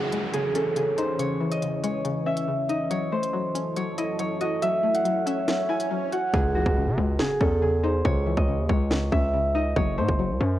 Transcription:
0.00 0.33 C#3 medium
0.00 0.77 E3 medium
0.00 2.87 E3 medium
0.00 2.87 C#4 medium
0.00 2.13 F#4 medium
0.00 0.33 G#4 medium
0.00 2.87 C#5 medium
0.00 0.13 E5 medium
0.00 0.87 F#5 medium
0.00 0.34 G#5 medium
0.00 downlifter medium
0.12 1.19 G#3 medium
0.12 closed hi-hat medium
0.34 0.75 C#3 medium
0.34 0.61 G#4 medium
0.34 closed hi-hat medium
0.55 1.62 C#4 medium
0.55 0.83 A4 medium
0.55 closed hi-hat medium
0.76 1.18 C#3 medium
0.76 3.04 G#4 medium
0.76 closed hi-hat medium
0.98 2.05 D#4 medium
0.98 1.25 C5 medium
0.98 closed hi-hat medium
1.19 1.61 C#3 medium
1.19 1.83 C#5 loud
1.19 closed hi-hat medium
1.41 2.48 E3 medium
1.52 2.32 D#5 medium
1.52 closed hi-hat medium
1.62 2.04 C#3 medium
1.62 closed hi-hat medium
1.83 2.91 G#3 medium
1.83 2.90 C#5 medium
1.83 closed hi-hat medium
2.05 2.47 C#3 medium
2.05 closed hi-hat medium
2.26 2.91 C#4 medium
2.26 2.75 E5 medium
2.37 closed hi-hat medium
2.48 2.91 C#3 medium
2.69 2.91 D#4 medium
2.69 3.97 D#5 medium
2.69 closed hi-hat medium
2.90 3.32 F#3 loud
2.90 6.30 F#3 medium
2.90 6.30 E4 medium
2.90 6.30 A4 medium
2.90 3.18 C#5 medium
2.90 closed hi-hat medium
2.90 swell medium
3.12 4.19 A3 medium
3.12 3.82 C5 medium
3.23 closed hi-hat medium
3.33 3.76 F#3 medium
3.55 4.62 C#4 medium
3.55 closed hi-hat medium
3.76 4.18 F#3 medium
3.76 4.19 C#5 medium
3.76 closed hi-hat medium
3.98 5.05 E4 medium
3.98 4.40 D#5 medium
3.98 closed hi-hat medium
4.19 4.61 F#3 medium
4.19 6.11 C#5 medium
4.19 closed hi-hat medium
4.41 5.48 F#4 medium
4.41 4.68 D#5 medium
4.41 closed hi-hat medium
4.62 5.04 F#3 medium
4.62 5.26 E5 loud
4.62 closed hi-hat medium
4.83 5.90 A3 medium
4.94 6.12 F#5 medium
4.94 closed hi-hat medium
5.05 5.47 F#3 medium
5.05 closed hi-hat medium
5.26 6.34 C#4 medium
5.26 6.99 E5 medium
5.26 closed hi-hat medium
5.48 5.89 F#3 medium
5.48 snare loud
5.48 closed hi-hat medium
5.69 6.33 E4 medium
5.69 7.19 G#5 medium
5.80 closed hi-hat medium
5.91 6.34 F#3 medium
6.12 6.34 F#4 medium
6.12 7.73 F#5 medium
6.12 closed hi-hat medium
6.33 6.64 C#2 loud
6.33 6.75 C#3 medium
6.33 7.19 G#4 medium
6.33 kick loud
6.33 impact medium
6.55 7.62 E3 medium
6.55 8.98 F#4 medium
6.66 6.89 C#2 loud
6.66 kick medium
6.77 7.18 C#3 medium
6.87 6.97 C#3 loud
6.98 7.18 C#2 loud
6.98 8.05 G#3 medium
7.19 7.61 C#3 medium
7.19 7.47 G#4 loud
7.19 snare loud
7.41 8.02 E2 loud
7.41 8.48 C#4 medium
7.41 7.68 A4 medium
7.41 kick medium
7.62 8.04 C#3 medium
7.62 9.89 G#4 medium
7.83 8.91 D#4 medium
7.83 8.11 C5 medium
8.05 8.36 C#2 loud
8.05 8.47 C#3 medium
8.05 8.69 C#5 loud
8.05 kick loud
8.26 9.34 E3 medium
8.37 8.60 C#2 loud
8.37 9.18 D#5 medium
8.37 kick medium
8.48 8.89 C#3 medium
8.59 8.69 D#2 loud
8.69 9.10 C#2 loud
8.69 9.76 G#3 medium
8.69 9.76 C#5 medium
8.69 kick loud
8.90 9.32 C#3 medium
8.90 snare loud
9.12 9.74 C#2 loud
9.12 9.76 C#4 medium
9.12 9.61 E5 medium
9.12 kick medium
9.34 9.76 C#3 medium
9.55 9.76 D#4 medium
9.55 10.59 D#5 medium
9.76 9.99 F#1 loud
9.76 10.18 F#3 loud
9.76 10.04 C#5 medium
9.76 kick loud
9.98 10.08 A2 loud
9.98 10.59 A3 medium
9.98 10.59 C5 medium
10.09 10.31 F#1 loud
10.09 kick medium
10.19 10.59 F#3 medium
10.30 10.40 C#2 loud
10.40 10.59 F#2 loud
10.40 10.59 C#4 medium

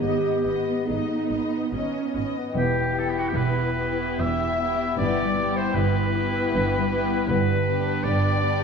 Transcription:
0.00 0.12 G#1 soft
0.00 2.58 G#2 soft
0.00 2.11 B3 soft
0.00 0.45 B3 soft
0.00 0.85 D#4 soft
0.00 0.87 G4 soft
0.00 0.43 D#5 soft
0.44 0.54 G#1 soft
0.44 3.05 B3 soft
0.44 0.88 B3 soft
0.44 0.87 D#5 soft
0.86 0.98 G#1 soft
0.86 1.71 D#4 soft
0.86 1.72 G#4 soft
0.86 1.29 D#5 soft
0.86 1.30 D#5 soft
0.90 1.70 D#4 soft
1.29 1.39 G#1 soft
1.29 2.13 B4 soft
1.29 1.72 D#5 soft
1.72 1.81 G#1 soft
1.72 2.35 C#4 soft
1.72 2.59 D#4 soft
1.72 2.15 D#5 soft
1.72 2.14 D#5 soft
2.14 2.23 G#1 soft
2.14 3.61 B4 soft
2.14 2.55 D#5 soft
2.37 2.56 B3 soft
2.55 3.22 E1 soft
2.55 5.02 E2 soft
2.55 3.22 E2 soft
2.55 2.84 E3 soft
2.55 2.84 B3 soft
2.55 3.30 G4 soft
2.55 3.01 G4 soft
2.81 4.47 B2 soft
2.95 3.75 B3 soft
2.95 3.76 E4 soft
2.95 3.75 G4 soft
2.99 3.12 A4 soft
3.07 4.20 B3 soft
3.07 3.20 G4 soft
3.19 3.29 F#4 soft
3.28 3.38 G4 soft
3.34 4.08 E1 soft
3.34 4.08 E2 soft
3.34 3.91 E4 soft
3.34 4.20 B4 soft
3.34 4.22 B4 medium
3.62 6.00 B4 soft
3.78 4.60 B3 soft
3.78 4.60 E4 soft
3.78 4.60 G4 soft
3.92 5.74 E4 soft
4.20 4.88 E1 soft
4.20 4.87 E2 soft
4.20 4.74 B3 soft
4.20 4.98 E5 medium
4.48 5.03 B2 soft
4.62 4.99 B3 soft
4.62 4.99 E4 soft
4.62 4.99 G4 soft
4.75 5.49 B3 soft
4.97 5.64 G1 soft
4.97 5.64 G2 soft
4.97 7.28 G2 soft
4.97 5.26 E3 soft
4.97 5.26 B3 soft
4.97 5.37 G4 soft
4.97 5.55 D5 medium
4.97 5.58 D5 medium
5.01 5.38 B3 soft
5.01 5.38 E4 soft
5.24 6.76 G3 soft
5.38 6.14 B3 soft
5.38 6.14 E4 soft
5.38 6.14 G4 soft
5.50 6.51 B3 soft
5.57 5.76 C5 medium
5.57 5.76 C5 soft
5.75 6.41 G1 soft
5.75 6.42 G2 soft
5.75 6.25 E4 soft
5.75 7.27 B4 medium
6.01 8.31 B4 soft
6.15 6.90 B3 soft
6.15 6.90 E4 soft
6.15 6.89 G4 soft
6.26 7.32 E4 soft
6.53 7.18 G1 soft
6.53 7.18 G2 soft
6.53 7.02 B3 soft
6.78 8.64 G3 soft
6.90 7.29 B3 soft
6.90 7.29 E4 soft
6.90 7.29 G4 soft
7.04 8.64 B3 soft
7.28 7.94 G1 medium
7.28 8.64 G2 soft
7.28 7.94 G2 medium
7.28 7.57 G3 soft
7.28 7.57 B3 soft
7.28 8.05 B4 medium
7.55 8.64 D3 soft
7.66 8.45 B3 soft
7.66 8.45 D4 soft
7.66 8.44 G4 soft
7.80 8.64 D4 soft
8.03 8.64 G1 medium
8.03 8.64 G2 medium
8.03 8.59 G4 soft
8.03 8.64 D5 medium
8.33 8.64 B4 soft
8.46 8.64 B3 soft
8.46 8.64 D4 soft
8.46 8.64 G4 soft
8.60 8.64 G4 soft

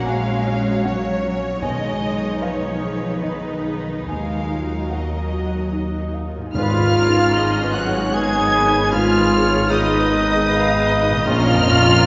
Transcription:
0.00 1.58 A#1 medium
0.00 1.66 A#2 medium
0.00 1.09 F#3 soft
0.00 1.59 F#3 medium
0.00 1.66 A#3 soft
0.00 1.58 C#4 medium
0.00 0.30 F#4 soft
0.00 0.31 F#4 soft
0.00 2.38 C#5 medium
0.00 1.65 A#5 medium
0.00 1.66 A#5 soft
0.05 0.84 G#3 medium
0.05 0.69 C#5 soft
0.05 0.84 C#5 soft
0.05 0.83 F5 medium
0.05 0.80 G#5 medium
0.33 1.10 F#4 soft
0.46 1.08 F#4 soft
0.59 1.66 F#5 soft
0.84 1.62 F#3 medium
0.84 1.47 C#4 soft
0.84 1.66 C#5 soft
0.84 1.62 C#5 medium
0.84 1.58 F#5 medium
1.11 1.66 F#4 soft
1.23 1.62 F#4 soft
1.37 1.66 C#4 soft
1.61 4.03 B1 medium
1.61 4.12 B2 medium
1.61 4.03 D#3 medium
1.61 2.40 G#3 medium
1.61 6.30 D#4 medium
1.61 2.42 D#5 medium
1.61 2.38 G#5 medium
1.89 4.12 B3 soft
2.02 2.66 G#4 soft
2.16 3.79 G#4 soft
2.41 3.22 F3 medium
2.41 3.06 B4 soft
2.41 4.08 B4 medium
2.41 3.50 B4 soft
2.41 3.23 C#5 medium
2.41 3.19 F5 medium
2.69 3.22 D#5 soft
2.82 3.48 G#4 soft
2.96 4.12 G#5 soft
3.22 4.08 D#3 soft
3.22 3.91 D#4 soft
3.22 4.08 B4 soft
3.22 4.04 D#5 soft
3.22 5.17 D#5 soft
3.52 4.12 B4 soft
3.66 4.08 G#4 soft
3.80 4.12 G#4 soft
4.07 6.30 D#2 soft
4.07 6.51 D#2 soft
4.07 6.58 D#3 soft
4.07 6.34 F#3 soft
4.07 4.89 G#3 medium
4.07 6.34 A#4 soft
4.07 4.89 F5 medium
4.07 4.87 G#5 medium
4.37 8.27 F#3 soft
4.51 5.16 F4 soft
4.65 6.58 F#4 soft
4.90 6.11 F#3 soft
4.90 5.56 A#4 soft
4.90 6.14 D#5 soft
4.90 6.09 F#5 soft
4.90 8.81 A#5 soft
5.18 5.72 D#5 soft
5.33 5.98 F#4 soft
5.46 6.58 F#5 soft
5.72 6.38 D#4 soft
5.72 9.63 D#5 soft
6.14 6.54 F5 soft
6.27 6.57 F4 soft
6.37 10.27 G#2 medium
6.41 10.31 D#4 soft
6.46 10.36 G#4 soft
6.51 11.23 G#1 medium
6.51 8.88 G#2 medium
6.51 10.41 B3 soft
6.51 8.09 C#4 medium
6.51 7.69 F4 medium
6.51 7.30 G#4 medium
6.51 7.75 F5 medium
6.51 7.70 F6 loud
6.55 11.23 G#2 medium
6.55 7.70 G#2 medium
6.55 7.76 F4 medium
6.55 6.92 B4 medium
6.55 7.31 F5 medium
6.81 7.24 D#3 soft
6.95 7.35 A#4 medium
7.08 7.50 D#4 soft
7.34 8.12 D#4 medium
7.34 8.12 G#4 medium
7.34 7.77 G#4 soft
7.34 7.74 D#5 medium
7.62 8.03 B4 soft
7.74 8.14 F#3 medium
7.74 8.15 F#4 medium
7.74 8.14 F#4 medium
7.74 8.93 C#5 medium
7.74 8.15 F#5 medium
7.74 8.13 F#6 medium
7.87 8.29 G#4 soft
8.13 8.92 G#3 medium
8.13 8.92 B3 medium
8.13 8.92 D#4 medium
8.13 8.52 G#4 medium
8.13 8.92 G#4 medium
8.13 8.95 G#4 medium
8.13 8.56 B4 soft
8.13 8.92 G#5 medium
8.13 8.92 G#6 medium
8.39 8.82 G#4 soft
8.53 8.91 B4 medium
8.67 9.08 D#4 soft
8.92 11.23 G#2 medium
8.92 9.69 G#3 medium
8.92 9.71 F4 medium
8.92 9.69 F4 medium
8.92 11.27 G#4 medium
8.92 9.30 B4 medium
8.92 9.72 F5 medium
8.92 9.68 F6 loud
9.18 9.59 D#3 soft
9.32 9.70 C#5 medium
9.45 9.86 D#4 medium
9.69 11.27 D#3 medium
9.69 10.08 B3 medium
9.69 11.23 D#4 medium
9.69 11.27 D#4 medium
9.69 10.11 G#4 medium
9.69 11.24 B4 medium
9.69 10.48 D#5 medium
9.69 11.27 D#5 medium
9.69 11.27 D#6 medium
9.96 10.38 B4 medium
10.09 10.47 B3 medium
10.22 10.64 G#4 medium
10.48 11.25 B3 medium
10.48 10.90 B4 medium
10.48 10.88 F5 medium
10.75 11.17 G#4 soft
10.88 12.06 D#5 medium
11.01 11.27 D#4 medium
11.10 12.06 A#2 medium
11.14 12.06 C#4 medium
11.23 12.06 A#1 medium
11.23 12.06 A#2 medium
11.23 11.64 C#4 medium
11.23 12.06 F4 medium
11.23 12.06 C#5 medium
11.23 12.06 F6 loud
11.27 12.06 A#1 medium
11.27 12.06 F3 loud
11.27 12.06 F4 loud
11.27 12.05 A#4 medium
11.27 12.06 F5 loud
11.53 11.96 F2 medium
11.65 12.05 C#4 medium
11.79 12.06 C#4 medium

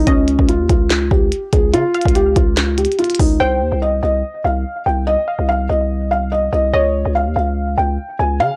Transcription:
0.07 0.38 C#2 loud
0.07 0.46 C#4 loud
0.07 0.46 D#5 loud
0.07 kick loud
0.07 closed hi-hat medium
0.28 closed hi-hat medium
0.39 0.61 C#2 loud
0.39 kick loud
0.49 0.67 F4 medium
0.49 closed hi-hat medium
0.60 0.69 D#2 loud
0.69 1.09 C#2 loud
0.69 1.09 F4 medium
0.69 kick loud
0.69 closed hi-hat medium
0.90 snare loud
0.90 clap loud
0.90 closed hi-hat medium
1.11 1.31 C#2 loud
1.11 1.50 G4 medium
1.11 kick medium
1.32 closed hi-hat medium
1.53 1.75 C#2 loud
1.53 1.71 G#4 medium
1.53 kick loud
1.53 closed hi-hat medium
1.73 1.84 C#3 loud
1.73 2.13 F4 loud
1.73 closed hi-hat medium
1.94 3.36 F5 medium
1.94 closed hi-hat soft
2.01 closed hi-hat medium
2.05 2.35 C#2 loud
2.05 kick loud
2.05 closed hi-hat medium
2.15 2.34 G4 loud
2.15 closed hi-hat loud
2.36 2.87 C#2 loud
2.36 2.75 F4 medium
2.36 kick loud
2.36 closed hi-hat medium
2.57 snare loud
2.57 clap loud
2.57 closed hi-hat medium
2.78 2.96 G4 medium
2.78 closed hi-hat medium
2.85 closed hi-hat medium
2.92 closed hi-hat soft
2.99 3.17 F4 medium
2.99 closed hi-hat soft
3.04 closed hi-hat medium
3.10 closed hi-hat medium
3.15 closed hi-hat medium
3.19 3.39 C#2 loud
3.19 3.38 D#4 medium
3.19 kick loud
3.19 open hi-hat medium
3.40 3.63 C2 loud
3.40 3.79 C5 loud
3.40 3.79 G5 loud
3.61 3.72 D#2 loud
3.72 4.01 C2 loud
3.82 4.00 D#5 medium
4.03 4.23 C2 loud
4.03 4.42 D#5 medium
4.44 4.64 C2 loud
4.44 4.84 F5 medium
4.86 5.17 C2 loud
4.86 5.05 G5 medium
5.07 5.46 D#5 loud
5.28 6.28 F5 medium
5.39 5.68 C2 loud
5.49 5.67 F5 medium
5.69 6.49 C2 loud
5.69 6.09 D#5 medium
6.11 6.30 F5 medium
6.32 6.50 D#5 medium
6.53 6.73 C2 loud
6.53 6.71 D#5 medium
6.73 7.04 C#2 loud
6.73 7.13 C#5 loud
6.73 7.13 D#5 loud
7.05 7.28 C#2 loud
7.15 7.34 F5 medium
7.26 7.36 D#2 loud
7.36 7.76 C#2 loud
7.36 7.75 F5 medium
7.77 7.98 C#2 loud
7.77 8.17 G5 medium
8.19 8.42 C#2 loud
8.19 8.38 G#5 medium
8.40 8.51 C#3 loud
8.40 8.56 F5 loud

